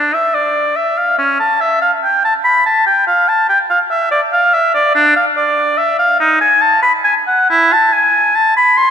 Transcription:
oboe
Already playing: D4
0.14 E5
0.34 D5
0.76 E5
0.98 F5
1.19 C#4
1.40 A5
1.61 E5
1.82 F5
2.04 G5
2.25 A5
2.44 B5
2.66 A5
2.86 G5
3.07 F5
3.28 A5
3.49 G5
3.70 F5
3.91 E5
4.11 D5
4.33 F5
4.54 E5
4.74 D5
4.95 D4
5.16 F5
5.37 D5
5.78 E5
5.99 F5
6.20 D#4
6.41 G#5
6.62 A5
6.82 B5
7.04 G#5
7.27 F#5
7.50 E4
7.73 A5
7.93 G#5
8.36 A5
8.57 B5
8.77 C6

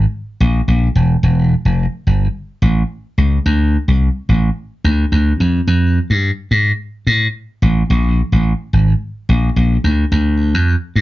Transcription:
slap bass
0.40 A#1
0.68 A#1
0.95 E1
1.23 E1
1.65 F1
2.07 G1
2.62 A1
3.18 C#2
3.46 D2
3.88 C2
4.29 A1
4.84 D2
5.12 D2
5.40 F2
5.67 F2
6.10 G2
6.51 G#2
7.07 A2
7.62 A1
7.90 A#1
8.32 A1
8.73 G#1
9.29 A#1
9.56 A#1
9.84 D2
10.12 D2
10.55 F2
10.96 G2

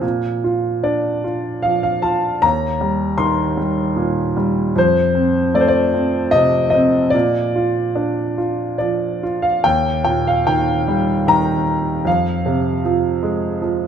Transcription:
grand piano
0.01 A#2
0.44 F4
0.83 D4 D5
1.24 F4
1.62 F3 F5
1.83 F5
2.02 F4 A5
2.42 D#2 A#5
2.81 G3
3.18 D#3 C6
3.57 G3
3.96 A#2
4.37 G3
4.76 F2 C5
5.15 C4
5.54 A3 D5
5.61 C5
5.68 D5
5.94 C4
6.31 C3 D#5
6.70 D#5
6.74 C4
7.10 D5
7.14 A#2
7.56 F4
7.95 D4
8.38 F4
8.78 F3 D5
9.23 F4
9.42 F5
9.64 D#2 G5
10.04 A#2 G5
10.27 F5
10.47 D#3 G5
10.88 G3
11.27 D#3 A#5
12.05 F2 F5
12.46 C3
12.85 F3
13.23 G#3
13.62 F3

